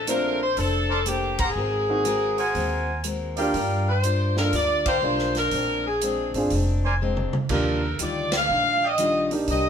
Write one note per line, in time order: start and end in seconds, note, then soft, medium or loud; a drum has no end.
0.00 0.53 A#1 medium
0.07 0.37 A3 soft
0.07 0.42 A#3 soft
0.07 0.38 C4 soft
0.07 0.42 D4 soft
0.07 0.38 D4 soft
0.07 0.38 F4 medium
0.07 0.43 A4 medium
0.07 0.41 A#4 medium
0.07 0.43 C5 medium
0.07 closed hi-hat soft
0.42 0.57 C5 medium
0.57 1.52 F1 medium
0.57 0.92 A#3 soft
0.57 0.92 D4 soft
0.57 0.92 A4 soft
0.57 1.07 A4 medium
0.57 0.93 C5 soft
0.57 kick soft
0.57 open hi-hat soft
0.90 1.01 A#4 medium
0.90 1.01 C5 medium
0.90 1.01 D5 medium
0.90 1.01 A5 medium
1.06 1.41 A#3 medium
1.06 1.42 D4 medium
1.06 1.40 G4 medium
1.06 1.42 A4 medium
1.06 1.42 C5 medium
1.06 closed hi-hat soft
1.39 2.85 G#4 medium
1.39 1.51 A#4 medium
1.39 1.51 C5 medium
1.39 1.51 F#5 medium
1.39 1.51 A#5 medium
1.39 kick medium
1.39 ride medium
1.56 2.51 G#1 medium
1.56 1.91 G#3 soft
1.56 1.91 C4 soft
1.56 1.92 F#4 soft
1.56 1.92 A#4 soft
1.89 2.04 A#3 medium
1.89 2.04 C4 medium
1.89 2.04 D#4 medium
1.89 2.04 F#4 medium
2.05 2.40 G#3 medium
2.05 2.41 C4 medium
2.05 2.41 F#4 medium
2.05 2.41 A#4 medium
2.05 closed hi-hat soft
2.38 3.01 A#4 medium
2.38 3.01 C5 medium
2.38 3.01 F#5 medium
2.38 3.01 G#5 medium
2.38 open hi-hat soft
2.55 3.50 D#2 medium
2.55 2.90 G#3 soft
2.55 2.90 C4 soft
2.55 2.91 F#4 medium
2.55 2.91 A#4 medium
2.55 kick soft
2.55 open hi-hat soft
3.04 3.39 G#3 medium
3.04 3.40 C4 medium
3.04 3.40 F#4 medium
3.04 3.40 A#4 medium
3.04 closed hi-hat soft
3.37 3.53 A#3 medium
3.37 3.53 D4 medium
3.37 3.53 F4 medium
3.37 3.53 G4 medium
3.37 4.00 A#4 medium
3.37 4.00 D5 medium
3.37 4.00 F5 medium
3.37 4.00 G5 medium
3.37 open hi-hat soft
3.54 4.49 G2 medium
3.54 3.89 G3 soft
3.54 3.90 D4 soft
3.54 3.90 F4 medium
3.54 3.91 A#4 medium
3.54 kick soft
3.54 open hi-hat soft
3.88 4.34 C5 medium
4.03 4.38 G3 soft
4.03 4.39 D4 medium
4.03 4.39 F4 medium
4.03 4.39 A#4 medium
4.03 closed hi-hat soft
4.37 4.51 A#3 soft
4.37 4.52 D4 soft
4.37 4.52 F4 soft
4.37 4.52 A4 medium
4.37 4.52 A#4 medium
4.37 snare soft
4.53 4.99 D2 medium
4.53 4.88 G3 soft
4.53 4.88 D4 soft
4.53 4.89 F4 soft
4.53 4.89 A#4 soft
4.53 4.85 D5 medium
4.53 kick soft
4.53 open hi-hat soft
4.86 4.97 A#4 medium
4.86 5.33 C5 medium
4.86 4.97 D5 medium
4.86 4.97 F5 medium
4.86 4.97 G5 medium
4.86 kick medium
4.86 ride medium
5.02 5.48 B1 medium
5.02 5.37 G3 medium
5.02 5.52 A#3 soft
5.02 5.52 D4 soft
5.02 5.38 D4 medium
5.02 5.53 F4 soft
5.02 5.38 F4 medium
5.02 5.38 A#4 medium
5.02 5.53 C5 medium
5.18 snare soft
5.35 5.86 A#4 medium
5.35 snare soft
5.35 open hi-hat soft
5.51 6.30 A#1 medium
5.51 5.87 A#2 soft
5.51 5.87 G#3 soft
5.51 5.88 C4 soft
5.51 5.88 D4 soft
5.51 kick soft
5.51 open hi-hat soft
5.87 6.32 G#4 medium
6.01 6.36 A#2 soft
6.01 6.37 G#3 medium
6.01 6.37 C4 medium
6.01 6.37 D4 medium
6.01 closed hi-hat soft
6.34 6.49 G#1 medium
6.34 6.50 C4 medium
6.34 6.50 D4 medium
6.34 6.50 F4 soft
6.34 6.51 G#4 medium
6.34 open hi-hat soft
6.50 7.30 F1 medium
6.50 6.86 A#2 soft
6.50 6.87 G#3 soft
6.50 6.87 C4 soft
6.50 kick soft
6.50 open hi-hat soft
6.55 6.88 D4 soft
6.84 6.95 A#4 medium
6.84 6.95 C5 medium
6.84 6.95 D5 medium
6.84 6.95 G#5 medium
7.02 7.36 A#2 medium
7.02 7.36 G#3 medium
7.02 7.36 C4 medium
7.02 7.37 D4 medium
7.17 mid tom medium
7.33 mid tom medium
7.49 7.96 D#2 medium
7.49 7.85 D#3 soft
7.49 7.86 G3 soft
7.49 7.80 A#3 medium
7.49 7.80 D4 medium
7.49 7.86 D4 soft
7.49 7.80 F4 medium
7.49 7.80 G4 medium
7.49 7.97 A#4 medium
7.49 kick medium
7.49 crash medium
7.54 7.86 F4 soft
7.99 8.45 D2 medium
7.99 8.34 D#3 soft
7.99 8.35 G3 medium
7.99 8.35 D4 soft
7.99 8.35 F4 medium
7.99 8.32 D5 medium
7.99 closed hi-hat soft
8.32 snare medium
8.32 ride medium
8.36 8.84 F5 loud
8.49 9.44 A#1 medium
8.49 8.84 D#3 soft
8.49 8.84 G3 soft
8.49 8.85 D4 soft
8.49 8.85 F4 soft
8.82 8.93 D5 medium
8.82 8.93 D#5 medium
8.82 9.33 D#5 medium
8.82 8.93 F5 medium
8.82 8.93 G5 medium
8.98 9.33 D#3 medium
8.98 9.33 G3 medium
8.98 9.34 D4 medium
8.98 9.34 F4 medium
8.98 closed hi-hat medium
9.31 9.69 A#3 soft
9.31 9.69 D4 soft
9.31 9.69 D#4 soft
9.31 9.69 G4 medium
9.31 open hi-hat soft
9.48 9.69 C2 medium
9.48 9.69 C3 soft
9.48 9.69 A#3 soft
9.48 9.69 D#4 soft
9.48 9.69 G4 soft
9.48 9.69 D#5 medium
9.48 kick soft
9.48 open hi-hat soft